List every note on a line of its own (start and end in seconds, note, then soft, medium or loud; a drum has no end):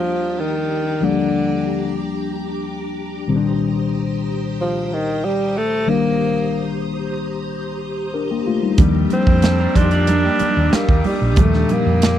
0.00 0.97 D#2 medium
0.00 0.41 F3 loud
0.00 0.97 F3 medium
0.00 0.98 G3 medium
0.00 0.98 A#3 medium
0.00 0.99 D4 medium
0.00 3.24 D4 medium
0.00 3.24 G4 medium
0.00 12.19 A#5 medium
0.00 0.99 D#6 medium
0.39 1.06 D#3 medium
1.01 3.24 D#2 medium
1.01 2.00 D3 medium
1.01 3.24 F3 medium
1.01 3.24 G3 medium
1.01 3.24 A#3 medium
1.01 3.25 D4 medium
1.01 3.26 D6 medium
3.27 5.82 C2 medium
3.27 5.83 A#2 medium
3.27 5.83 D#3 medium
3.27 5.83 G3 medium
3.27 3.35 C4 medium
3.27 12.19 G4 medium
3.27 8.74 C5 medium
3.27 8.74 D#6 medium
3.36 5.87 D4 medium
4.61 4.85 F3 medium
4.85 4.94 F3 medium
4.93 5.26 D#3 medium
5.25 5.59 G3 medium
5.57 5.91 A3 loud
5.86 8.41 C2 medium
5.86 8.42 D#3 medium
5.86 8.10 G3 medium
5.86 8.10 A#3 medium
5.86 6.85 A#3 loud
5.86 8.11 D4 medium
8.14 8.30 D4 medium
8.14 8.29 A#4 medium
8.31 8.46 A#3 medium
8.31 8.46 G4 medium
8.47 8.62 A3 medium
8.47 8.62 F4 medium
8.62 8.77 G3 medium
8.62 8.93 D#4 medium
8.78 9.05 D#2 loud
8.78 12.19 A#2 medium
8.78 12.19 D#3 medium
8.78 11.33 F3 medium
8.78 11.33 G3 medium
8.78 12.19 G3 medium
8.78 11.34 A#3 medium
8.78 12.19 D4 medium
8.78 11.34 D4 medium
8.78 12.19 D#6 medium
8.78 kick loud
8.78 closed hi-hat medium
8.78 low conga medium
8.95 muted conga soft
9.10 9.78 C4 loud
9.10 closed hi-hat medium
9.10 high conga medium
9.27 9.66 F2 medium
9.27 kick medium
9.42 9.59 C4 medium
9.42 9.58 A4 medium
9.42 snare loud
9.42 closed hi-hat loud
9.60 9.75 D4 medium
9.60 9.75 A#4 medium
9.75 10.28 F2 medium
9.75 10.76 D4 loud
9.75 9.91 D#4 medium
9.75 9.91 C5 medium
9.75 kick medium
9.75 closed hi-hat medium
9.75 low conga medium
9.91 10.08 F4 medium
9.91 10.07 D5 medium
9.91 closed hi-hat medium
10.07 10.24 D4 medium
10.07 10.23 A#4 medium
10.07 closed hi-hat loud
10.07 muted conga soft
10.07 high conga medium
10.24 11.17 A#3 medium
10.24 11.17 G4 medium
10.39 muted fingered electric bass stroke medium
10.39 closed hi-hat medium
10.39 high conga medium
10.57 10.70 D#2 medium
10.73 11.06 A#3 loud
10.73 muted fingered electric bass stroke soft
10.73 snare loud
10.73 closed hi-hat medium
10.73 high conga soft
10.89 11.02 D#2 medium
10.89 kick loud
11.04 11.41 G3 medium
11.04 open hi-hat medium
11.04 high conga medium
11.22 11.37 A#1 medium
11.36 11.63 D#2 loud
11.36 12.19 A#2 medium
11.36 12.19 F3 medium
11.36 12.19 G3 medium
11.36 11.74 A3 medium
11.36 12.19 D4 medium
11.36 kick loud
11.36 closed hi-hat medium
11.36 muted conga soft
11.36 low conga medium
11.53 snare soft
11.53 muted conga soft
11.69 12.19 A#3 loud
11.69 closed hi-hat medium
11.69 high conga medium
11.86 12.19 F2 loud
12.02 snare loud
12.02 closed hi-hat loud